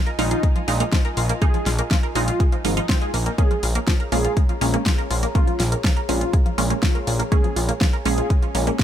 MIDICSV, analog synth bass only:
0, 0, Header, 1, 2, 480
1, 0, Start_track
1, 0, Key_signature, -5, "minor"
1, 0, Tempo, 491803
1, 1382, Time_signature, 4, 2, 24, 8
1, 8624, End_track
2, 0, Start_track
2, 0, Title_t, "Analog synth bass"
2, 0, Program_c, 0, 38
2, 182, Note_on_c, 0, 34, 102
2, 328, Note_off_c, 0, 34, 0
2, 662, Note_on_c, 0, 34, 103
2, 808, Note_off_c, 0, 34, 0
2, 1142, Note_on_c, 0, 34, 96
2, 1288, Note_off_c, 0, 34, 0
2, 1622, Note_on_c, 0, 34, 101
2, 1768, Note_off_c, 0, 34, 0
2, 2102, Note_on_c, 0, 34, 100
2, 2248, Note_off_c, 0, 34, 0
2, 2583, Note_on_c, 0, 32, 80
2, 2729, Note_off_c, 0, 32, 0
2, 3062, Note_on_c, 0, 34, 87
2, 3208, Note_off_c, 0, 34, 0
2, 3543, Note_on_c, 0, 34, 103
2, 3688, Note_off_c, 0, 34, 0
2, 4022, Note_on_c, 0, 34, 101
2, 4168, Note_off_c, 0, 34, 0
2, 4503, Note_on_c, 0, 34, 102
2, 4648, Note_off_c, 0, 34, 0
2, 4982, Note_on_c, 0, 34, 99
2, 5128, Note_off_c, 0, 34, 0
2, 5462, Note_on_c, 0, 34, 101
2, 5608, Note_off_c, 0, 34, 0
2, 5942, Note_on_c, 0, 34, 104
2, 6088, Note_off_c, 0, 34, 0
2, 6422, Note_on_c, 0, 34, 105
2, 6568, Note_off_c, 0, 34, 0
2, 6902, Note_on_c, 0, 34, 93
2, 7048, Note_off_c, 0, 34, 0
2, 7382, Note_on_c, 0, 34, 100
2, 7528, Note_off_c, 0, 34, 0
2, 7862, Note_on_c, 0, 34, 99
2, 8008, Note_off_c, 0, 34, 0
2, 8342, Note_on_c, 0, 34, 102
2, 8488, Note_off_c, 0, 34, 0
2, 8624, End_track
0, 0, End_of_file